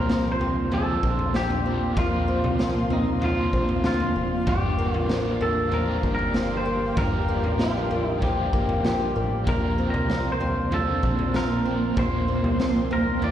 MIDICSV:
0, 0, Header, 1, 7, 480
1, 0, Start_track
1, 0, Key_signature, -2, "major"
1, 0, Tempo, 625000
1, 1513, Time_signature, 4, 2, 24, 8
1, 10224, End_track
2, 0, Start_track
2, 0, Title_t, "Ambient pad"
2, 0, Program_c, 0, 92
2, 0, Note_on_c, 0, 58, 80
2, 0, Note_on_c, 0, 74, 69
2, 0, Note_on_c, 0, 77, 72
2, 0, Note_on_c, 0, 84, 88
2, 3401, Note_off_c, 0, 58, 0
2, 3402, Note_off_c, 0, 84, 0
2, 3435, Note_on_c, 0, 79, 93
2, 3436, Note_on_c, 0, 67, 85
2, 7243, Note_off_c, 0, 79, 0
2, 7244, Note_off_c, 0, 67, 0
2, 7274, Note_on_c, 0, 84, 88
2, 7277, Note_on_c, 0, 58, 84
2, 9161, Note_off_c, 0, 77, 0
2, 9196, Note_on_c, 0, 79, 78
2, 10224, Note_off_c, 0, 58, 0
2, 10224, Note_off_c, 0, 74, 0
2, 10224, Note_off_c, 0, 79, 0
2, 10224, Note_off_c, 0, 84, 0
2, 10224, End_track
3, 0, Start_track
3, 0, Title_t, "Clean electric guitar"
3, 0, Program_c, 1, 27
3, 0, Note_on_c, 1, 70, 81
3, 242, Note_off_c, 1, 70, 0
3, 245, Note_on_c, 1, 72, 87
3, 564, Note_off_c, 1, 72, 0
3, 567, Note_on_c, 1, 69, 83
3, 1042, Note_off_c, 1, 69, 0
3, 1045, Note_on_c, 1, 67, 90
3, 1522, Note_off_c, 1, 67, 0
3, 1526, Note_on_c, 1, 65, 86
3, 2248, Note_on_c, 1, 63, 65
3, 2260, Note_off_c, 1, 65, 0
3, 2487, Note_off_c, 1, 63, 0
3, 2490, Note_on_c, 1, 65, 75
3, 2960, Note_off_c, 1, 65, 0
3, 2969, Note_on_c, 1, 65, 84
3, 3446, Note_off_c, 1, 65, 0
3, 3449, Note_on_c, 1, 67, 80
3, 3787, Note_off_c, 1, 67, 0
3, 3787, Note_on_c, 1, 65, 80
3, 3890, Note_off_c, 1, 65, 0
3, 4165, Note_on_c, 1, 69, 75
3, 4403, Note_off_c, 1, 69, 0
3, 4406, Note_on_c, 1, 70, 73
3, 4711, Note_off_c, 1, 70, 0
3, 4721, Note_on_c, 1, 70, 83
3, 5043, Note_off_c, 1, 70, 0
3, 5046, Note_on_c, 1, 72, 78
3, 5359, Note_off_c, 1, 72, 0
3, 5362, Note_on_c, 1, 70, 87
3, 5844, Note_on_c, 1, 65, 71
3, 5852, Note_off_c, 1, 70, 0
3, 6221, Note_off_c, 1, 65, 0
3, 6221, Note_on_c, 1, 63, 71
3, 6321, Note_off_c, 1, 63, 0
3, 6324, Note_on_c, 1, 67, 70
3, 6796, Note_off_c, 1, 67, 0
3, 6805, Note_on_c, 1, 67, 76
3, 7286, Note_on_c, 1, 70, 97
3, 7293, Note_off_c, 1, 67, 0
3, 7596, Note_off_c, 1, 70, 0
3, 7605, Note_on_c, 1, 70, 83
3, 7924, Note_off_c, 1, 70, 0
3, 7927, Note_on_c, 1, 72, 84
3, 8218, Note_off_c, 1, 72, 0
3, 8248, Note_on_c, 1, 69, 80
3, 8724, Note_off_c, 1, 69, 0
3, 8727, Note_on_c, 1, 70, 100
3, 9207, Note_off_c, 1, 70, 0
3, 9210, Note_on_c, 1, 72, 93
3, 9925, Note_off_c, 1, 72, 0
3, 9928, Note_on_c, 1, 70, 86
3, 10164, Note_off_c, 1, 70, 0
3, 10167, Note_on_c, 1, 74, 80
3, 10224, Note_off_c, 1, 74, 0
3, 10224, End_track
4, 0, Start_track
4, 0, Title_t, "Overdriven electric guitar"
4, 0, Program_c, 2, 29
4, 0, Note_on_c, 2, 46, 55
4, 0, Note_on_c, 2, 50, 65
4, 0, Note_on_c, 2, 53, 75
4, 0, Note_on_c, 2, 60, 73
4, 0, Note_on_c, 2, 62, 63
4, 0, Note_on_c, 2, 70, 66
4, 538, Note_off_c, 2, 46, 0
4, 547, Note_on_c, 2, 46, 58
4, 553, Note_off_c, 2, 50, 0
4, 556, Note_on_c, 2, 50, 71
4, 557, Note_off_c, 2, 60, 0
4, 558, Note_off_c, 2, 53, 0
4, 561, Note_on_c, 2, 53, 60
4, 566, Note_on_c, 2, 60, 57
4, 571, Note_off_c, 2, 62, 0
4, 574, Note_on_c, 2, 62, 72
4, 589, Note_off_c, 2, 70, 0
4, 1261, Note_on_c, 2, 70, 45
4, 1270, Note_off_c, 2, 46, 0
4, 1276, Note_off_c, 2, 62, 0
4, 1279, Note_off_c, 2, 60, 0
4, 1279, Note_on_c, 2, 62, 47
4, 1292, Note_on_c, 2, 60, 37
4, 1305, Note_off_c, 2, 53, 0
4, 1308, Note_on_c, 2, 53, 36
4, 1315, Note_off_c, 2, 50, 0
4, 1492, Note_on_c, 2, 46, 65
4, 1507, Note_off_c, 2, 70, 0
4, 1516, Note_off_c, 2, 53, 0
4, 1516, Note_off_c, 2, 62, 0
4, 1522, Note_off_c, 2, 60, 0
4, 1525, Note_on_c, 2, 53, 76
4, 1539, Note_on_c, 2, 60, 74
4, 1562, Note_on_c, 2, 70, 69
4, 2446, Note_off_c, 2, 46, 0
4, 2455, Note_on_c, 2, 46, 59
4, 2471, Note_on_c, 2, 50, 66
4, 2482, Note_off_c, 2, 53, 0
4, 2485, Note_on_c, 2, 53, 71
4, 2486, Note_off_c, 2, 60, 0
4, 2501, Note_on_c, 2, 60, 71
4, 2513, Note_on_c, 2, 62, 72
4, 2519, Note_off_c, 2, 70, 0
4, 2522, Note_on_c, 2, 70, 75
4, 3422, Note_off_c, 2, 46, 0
4, 3425, Note_on_c, 2, 43, 66
4, 3430, Note_off_c, 2, 50, 0
4, 3433, Note_on_c, 2, 50, 66
4, 3435, Note_off_c, 2, 53, 0
4, 3438, Note_on_c, 2, 53, 71
4, 3442, Note_off_c, 2, 60, 0
4, 3445, Note_on_c, 2, 58, 80
4, 3446, Note_off_c, 2, 62, 0
4, 3449, Note_on_c, 2, 62, 77
4, 3452, Note_off_c, 2, 70, 0
4, 3455, Note_on_c, 2, 67, 83
4, 3901, Note_off_c, 2, 53, 0
4, 3904, Note_on_c, 2, 53, 44
4, 3909, Note_off_c, 2, 43, 0
4, 3920, Note_off_c, 2, 58, 0
4, 3923, Note_on_c, 2, 58, 51
4, 3924, Note_off_c, 2, 67, 0
4, 3934, Note_off_c, 2, 62, 0
4, 3937, Note_on_c, 2, 62, 56
4, 3949, Note_on_c, 2, 67, 51
4, 4375, Note_on_c, 2, 43, 72
4, 4388, Note_off_c, 2, 50, 0
4, 4391, Note_on_c, 2, 50, 67
4, 4398, Note_off_c, 2, 53, 0
4, 4407, Note_on_c, 2, 53, 73
4, 4411, Note_off_c, 2, 67, 0
4, 4418, Note_off_c, 2, 58, 0
4, 4421, Note_on_c, 2, 58, 86
4, 4429, Note_off_c, 2, 62, 0
4, 4432, Note_on_c, 2, 62, 71
4, 4444, Note_on_c, 2, 67, 86
4, 5339, Note_off_c, 2, 43, 0
4, 5349, Note_on_c, 2, 43, 65
4, 5355, Note_off_c, 2, 50, 0
4, 5358, Note_on_c, 2, 50, 65
4, 5359, Note_off_c, 2, 53, 0
4, 5362, Note_on_c, 2, 53, 63
4, 5366, Note_off_c, 2, 58, 0
4, 5369, Note_on_c, 2, 58, 67
4, 5371, Note_off_c, 2, 62, 0
4, 5371, Note_off_c, 2, 67, 0
4, 5374, Note_on_c, 2, 62, 65
4, 5380, Note_on_c, 2, 67, 66
4, 5817, Note_off_c, 2, 53, 0
4, 5820, Note_on_c, 2, 53, 51
4, 5831, Note_off_c, 2, 43, 0
4, 5836, Note_off_c, 2, 58, 0
4, 5839, Note_on_c, 2, 58, 48
4, 5846, Note_off_c, 2, 67, 0
4, 5850, Note_off_c, 2, 62, 0
4, 5853, Note_on_c, 2, 62, 49
4, 5867, Note_on_c, 2, 67, 50
4, 6292, Note_on_c, 2, 43, 62
4, 6306, Note_off_c, 2, 50, 0
4, 6309, Note_on_c, 2, 50, 68
4, 6315, Note_off_c, 2, 53, 0
4, 6324, Note_on_c, 2, 53, 64
4, 6330, Note_off_c, 2, 67, 0
4, 6333, Note_off_c, 2, 58, 0
4, 6336, Note_on_c, 2, 58, 63
4, 6346, Note_off_c, 2, 62, 0
4, 6349, Note_on_c, 2, 62, 64
4, 6360, Note_on_c, 2, 67, 70
4, 7246, Note_off_c, 2, 43, 0
4, 7249, Note_on_c, 2, 46, 63
4, 7263, Note_off_c, 2, 50, 0
4, 7266, Note_on_c, 2, 50, 69
4, 7278, Note_off_c, 2, 53, 0
4, 7281, Note_on_c, 2, 53, 70
4, 7290, Note_off_c, 2, 58, 0
4, 7293, Note_on_c, 2, 60, 59
4, 7296, Note_off_c, 2, 67, 0
4, 7303, Note_off_c, 2, 62, 0
4, 7306, Note_on_c, 2, 62, 65
4, 7317, Note_on_c, 2, 70, 68
4, 8216, Note_off_c, 2, 46, 0
4, 8225, Note_on_c, 2, 46, 66
4, 8228, Note_off_c, 2, 50, 0
4, 8232, Note_on_c, 2, 50, 70
4, 8236, Note_off_c, 2, 53, 0
4, 8237, Note_off_c, 2, 60, 0
4, 8239, Note_on_c, 2, 53, 65
4, 8246, Note_on_c, 2, 60, 67
4, 8247, Note_off_c, 2, 62, 0
4, 8250, Note_on_c, 2, 62, 74
4, 8269, Note_off_c, 2, 70, 0
4, 8939, Note_on_c, 2, 70, 41
4, 8949, Note_off_c, 2, 46, 0
4, 8954, Note_off_c, 2, 62, 0
4, 8957, Note_on_c, 2, 62, 42
4, 8959, Note_off_c, 2, 60, 0
4, 8971, Note_on_c, 2, 60, 38
4, 8980, Note_off_c, 2, 53, 0
4, 8983, Note_on_c, 2, 53, 38
4, 8994, Note_off_c, 2, 50, 0
4, 9171, Note_on_c, 2, 46, 61
4, 9186, Note_off_c, 2, 70, 0
4, 9190, Note_on_c, 2, 50, 62
4, 9193, Note_off_c, 2, 53, 0
4, 9195, Note_off_c, 2, 62, 0
4, 9202, Note_off_c, 2, 60, 0
4, 9202, Note_on_c, 2, 53, 67
4, 9216, Note_on_c, 2, 60, 69
4, 9227, Note_on_c, 2, 62, 62
4, 9240, Note_on_c, 2, 70, 75
4, 10124, Note_off_c, 2, 46, 0
4, 10133, Note_on_c, 2, 46, 70
4, 10148, Note_off_c, 2, 50, 0
4, 10151, Note_on_c, 2, 50, 67
4, 10162, Note_off_c, 2, 53, 0
4, 10164, Note_off_c, 2, 60, 0
4, 10165, Note_on_c, 2, 53, 72
4, 10176, Note_on_c, 2, 60, 78
4, 10186, Note_off_c, 2, 62, 0
4, 10189, Note_on_c, 2, 62, 76
4, 10199, Note_off_c, 2, 70, 0
4, 10224, Note_off_c, 2, 46, 0
4, 10224, Note_off_c, 2, 50, 0
4, 10224, Note_off_c, 2, 53, 0
4, 10224, Note_off_c, 2, 60, 0
4, 10224, Note_off_c, 2, 62, 0
4, 10224, End_track
5, 0, Start_track
5, 0, Title_t, "Twelve-string acoustic guitar"
5, 0, Program_c, 3, 25
5, 0, Note_on_c, 3, 46, 69
5, 0, Note_on_c, 3, 60, 62
5, 70, Note_on_c, 3, 53, 50
5, 304, Note_off_c, 3, 60, 0
5, 313, Note_on_c, 3, 60, 53
5, 547, Note_off_c, 3, 53, 0
5, 550, Note_on_c, 3, 53, 62
5, 783, Note_off_c, 3, 60, 0
5, 792, Note_on_c, 3, 60, 48
5, 1028, Note_off_c, 3, 53, 0
5, 1031, Note_on_c, 3, 53, 50
5, 1262, Note_off_c, 3, 60, 0
5, 1272, Note_on_c, 3, 60, 49
5, 1502, Note_off_c, 3, 46, 0
5, 1511, Note_on_c, 3, 46, 74
5, 1742, Note_off_c, 3, 60, 0
5, 1751, Note_on_c, 3, 60, 59
5, 1989, Note_off_c, 3, 53, 0
5, 1992, Note_on_c, 3, 53, 57
5, 2221, Note_off_c, 3, 60, 0
5, 2230, Note_on_c, 3, 60, 55
5, 2469, Note_off_c, 3, 53, 0
5, 2472, Note_on_c, 3, 53, 59
5, 2705, Note_off_c, 3, 60, 0
5, 2714, Note_on_c, 3, 60, 58
5, 2948, Note_off_c, 3, 53, 0
5, 2951, Note_on_c, 3, 53, 51
5, 3183, Note_off_c, 3, 60, 0
5, 3192, Note_on_c, 3, 60, 46
5, 3429, Note_off_c, 3, 46, 0
5, 3432, Note_on_c, 3, 43, 80
5, 3480, Note_off_c, 3, 60, 0
5, 3675, Note_on_c, 3, 58, 62
5, 3910, Note_off_c, 3, 53, 0
5, 3913, Note_on_c, 3, 53, 54
5, 4150, Note_off_c, 3, 58, 0
5, 4153, Note_on_c, 3, 58, 57
5, 4387, Note_off_c, 3, 53, 0
5, 4390, Note_on_c, 3, 53, 59
5, 4629, Note_off_c, 3, 58, 0
5, 4632, Note_on_c, 3, 58, 50
5, 4867, Note_off_c, 3, 53, 0
5, 4870, Note_on_c, 3, 53, 53
5, 5108, Note_off_c, 3, 58, 0
5, 5111, Note_on_c, 3, 58, 54
5, 5343, Note_off_c, 3, 43, 0
5, 5352, Note_on_c, 3, 43, 72
5, 5591, Note_off_c, 3, 58, 0
5, 5594, Note_on_c, 3, 58, 59
5, 5830, Note_off_c, 3, 53, 0
5, 5833, Note_on_c, 3, 53, 54
5, 6070, Note_off_c, 3, 58, 0
5, 6073, Note_on_c, 3, 58, 53
5, 6310, Note_off_c, 3, 53, 0
5, 6313, Note_on_c, 3, 53, 60
5, 6549, Note_off_c, 3, 58, 0
5, 6552, Note_on_c, 3, 58, 55
5, 6788, Note_off_c, 3, 53, 0
5, 6792, Note_on_c, 3, 53, 49
5, 7028, Note_off_c, 3, 58, 0
5, 7031, Note_on_c, 3, 58, 51
5, 7268, Note_off_c, 3, 43, 0
5, 7271, Note_on_c, 3, 46, 75
5, 7509, Note_off_c, 3, 58, 0
5, 7512, Note_on_c, 3, 60, 53
5, 7747, Note_off_c, 3, 53, 0
5, 7750, Note_on_c, 3, 53, 55
5, 7981, Note_off_c, 3, 60, 0
5, 7990, Note_on_c, 3, 60, 55
5, 8228, Note_off_c, 3, 53, 0
5, 8231, Note_on_c, 3, 53, 64
5, 8458, Note_off_c, 3, 60, 0
5, 8468, Note_on_c, 3, 60, 55
5, 8707, Note_off_c, 3, 53, 0
5, 8710, Note_on_c, 3, 53, 55
5, 8941, Note_off_c, 3, 60, 0
5, 8951, Note_on_c, 3, 60, 54
5, 9181, Note_off_c, 3, 46, 0
5, 9190, Note_on_c, 3, 46, 66
5, 9423, Note_off_c, 3, 60, 0
5, 9432, Note_on_c, 3, 60, 57
5, 9668, Note_off_c, 3, 53, 0
5, 9672, Note_on_c, 3, 53, 58
5, 9903, Note_off_c, 3, 60, 0
5, 9912, Note_on_c, 3, 60, 54
5, 10150, Note_off_c, 3, 53, 0
5, 10153, Note_on_c, 3, 53, 65
5, 10224, Note_off_c, 3, 46, 0
5, 10224, Note_off_c, 3, 53, 0
5, 10224, Note_off_c, 3, 60, 0
5, 10224, End_track
6, 0, Start_track
6, 0, Title_t, "Analog synth bass"
6, 0, Program_c, 4, 38
6, 0, Note_on_c, 4, 36, 84
6, 764, Note_off_c, 4, 36, 0
6, 793, Note_on_c, 4, 34, 93
6, 1482, Note_off_c, 4, 34, 0
6, 1513, Note_on_c, 4, 34, 95
6, 1855, Note_off_c, 4, 34, 0
6, 1875, Note_on_c, 4, 36, 84
6, 2683, Note_off_c, 4, 36, 0
6, 2713, Note_on_c, 4, 34, 88
6, 2941, Note_off_c, 4, 34, 0
6, 2948, Note_on_c, 4, 38, 88
6, 3178, Note_off_c, 4, 38, 0
6, 3193, Note_on_c, 4, 29, 78
6, 3421, Note_off_c, 4, 29, 0
6, 3434, Note_on_c, 4, 31, 108
6, 3792, Note_on_c, 4, 33, 82
6, 3804, Note_off_c, 4, 31, 0
6, 4602, Note_off_c, 4, 33, 0
6, 4634, Note_on_c, 4, 31, 89
6, 5323, Note_off_c, 4, 31, 0
6, 5354, Note_on_c, 4, 31, 103
6, 5716, Note_on_c, 4, 33, 80
6, 5727, Note_off_c, 4, 31, 0
6, 6523, Note_off_c, 4, 33, 0
6, 6552, Note_on_c, 4, 31, 92
6, 6780, Note_off_c, 4, 31, 0
6, 6797, Note_on_c, 4, 34, 89
6, 7023, Note_off_c, 4, 34, 0
6, 7035, Note_on_c, 4, 33, 78
6, 7262, Note_off_c, 4, 33, 0
6, 7272, Note_on_c, 4, 34, 104
6, 7614, Note_off_c, 4, 34, 0
6, 7633, Note_on_c, 4, 36, 86
6, 8442, Note_off_c, 4, 36, 0
6, 8473, Note_on_c, 4, 34, 98
6, 9162, Note_off_c, 4, 34, 0
6, 9194, Note_on_c, 4, 34, 98
6, 9535, Note_off_c, 4, 34, 0
6, 9552, Note_on_c, 4, 36, 94
6, 10224, Note_off_c, 4, 36, 0
6, 10224, End_track
7, 0, Start_track
7, 0, Title_t, "Drums"
7, 74, Note_on_c, 9, 38, 107
7, 151, Note_off_c, 9, 38, 0
7, 314, Note_on_c, 9, 43, 51
7, 391, Note_off_c, 9, 43, 0
7, 551, Note_on_c, 9, 43, 58
7, 628, Note_off_c, 9, 43, 0
7, 793, Note_on_c, 9, 36, 77
7, 869, Note_off_c, 9, 36, 0
7, 912, Note_on_c, 9, 43, 51
7, 989, Note_off_c, 9, 43, 0
7, 1031, Note_on_c, 9, 38, 95
7, 1107, Note_off_c, 9, 38, 0
7, 1154, Note_on_c, 9, 43, 56
7, 1231, Note_off_c, 9, 43, 0
7, 1512, Note_on_c, 9, 36, 96
7, 1512, Note_on_c, 9, 43, 101
7, 1588, Note_off_c, 9, 43, 0
7, 1589, Note_off_c, 9, 36, 0
7, 1875, Note_on_c, 9, 43, 55
7, 1951, Note_off_c, 9, 43, 0
7, 1992, Note_on_c, 9, 38, 102
7, 2068, Note_off_c, 9, 38, 0
7, 2230, Note_on_c, 9, 43, 57
7, 2307, Note_off_c, 9, 43, 0
7, 2471, Note_on_c, 9, 43, 67
7, 2548, Note_off_c, 9, 43, 0
7, 2712, Note_on_c, 9, 36, 72
7, 2789, Note_off_c, 9, 36, 0
7, 2832, Note_on_c, 9, 43, 52
7, 2909, Note_off_c, 9, 43, 0
7, 2949, Note_on_c, 9, 38, 102
7, 3026, Note_off_c, 9, 38, 0
7, 3074, Note_on_c, 9, 43, 54
7, 3151, Note_off_c, 9, 43, 0
7, 3432, Note_on_c, 9, 43, 87
7, 3434, Note_on_c, 9, 36, 96
7, 3509, Note_off_c, 9, 43, 0
7, 3510, Note_off_c, 9, 36, 0
7, 3796, Note_on_c, 9, 43, 55
7, 3873, Note_off_c, 9, 43, 0
7, 3913, Note_on_c, 9, 38, 96
7, 3990, Note_off_c, 9, 38, 0
7, 4153, Note_on_c, 9, 43, 61
7, 4230, Note_off_c, 9, 43, 0
7, 4392, Note_on_c, 9, 43, 55
7, 4469, Note_off_c, 9, 43, 0
7, 4633, Note_on_c, 9, 36, 65
7, 4710, Note_off_c, 9, 36, 0
7, 4753, Note_on_c, 9, 43, 53
7, 4829, Note_off_c, 9, 43, 0
7, 4872, Note_on_c, 9, 38, 96
7, 4949, Note_off_c, 9, 38, 0
7, 5353, Note_on_c, 9, 36, 103
7, 5353, Note_on_c, 9, 43, 97
7, 5430, Note_off_c, 9, 36, 0
7, 5430, Note_off_c, 9, 43, 0
7, 5712, Note_on_c, 9, 43, 58
7, 5789, Note_off_c, 9, 43, 0
7, 5832, Note_on_c, 9, 38, 112
7, 5908, Note_off_c, 9, 38, 0
7, 6073, Note_on_c, 9, 43, 53
7, 6150, Note_off_c, 9, 43, 0
7, 6312, Note_on_c, 9, 43, 63
7, 6314, Note_on_c, 9, 36, 95
7, 6389, Note_off_c, 9, 43, 0
7, 6391, Note_off_c, 9, 36, 0
7, 6553, Note_on_c, 9, 36, 81
7, 6629, Note_off_c, 9, 36, 0
7, 6674, Note_on_c, 9, 43, 58
7, 6750, Note_off_c, 9, 43, 0
7, 6794, Note_on_c, 9, 38, 100
7, 6871, Note_off_c, 9, 38, 0
7, 7273, Note_on_c, 9, 36, 93
7, 7273, Note_on_c, 9, 43, 95
7, 7350, Note_off_c, 9, 36, 0
7, 7350, Note_off_c, 9, 43, 0
7, 7634, Note_on_c, 9, 43, 57
7, 7711, Note_off_c, 9, 43, 0
7, 7755, Note_on_c, 9, 38, 101
7, 7832, Note_off_c, 9, 38, 0
7, 7995, Note_on_c, 9, 43, 55
7, 8072, Note_off_c, 9, 43, 0
7, 8234, Note_on_c, 9, 43, 68
7, 8311, Note_off_c, 9, 43, 0
7, 8473, Note_on_c, 9, 36, 70
7, 8550, Note_off_c, 9, 36, 0
7, 8592, Note_on_c, 9, 43, 52
7, 8669, Note_off_c, 9, 43, 0
7, 8712, Note_on_c, 9, 38, 107
7, 8789, Note_off_c, 9, 38, 0
7, 9193, Note_on_c, 9, 36, 99
7, 9194, Note_on_c, 9, 43, 98
7, 9270, Note_off_c, 9, 36, 0
7, 9271, Note_off_c, 9, 43, 0
7, 9555, Note_on_c, 9, 43, 53
7, 9632, Note_off_c, 9, 43, 0
7, 9675, Note_on_c, 9, 38, 109
7, 9752, Note_off_c, 9, 38, 0
7, 9915, Note_on_c, 9, 43, 55
7, 9992, Note_off_c, 9, 43, 0
7, 10154, Note_on_c, 9, 43, 63
7, 10224, Note_off_c, 9, 43, 0
7, 10224, End_track
0, 0, End_of_file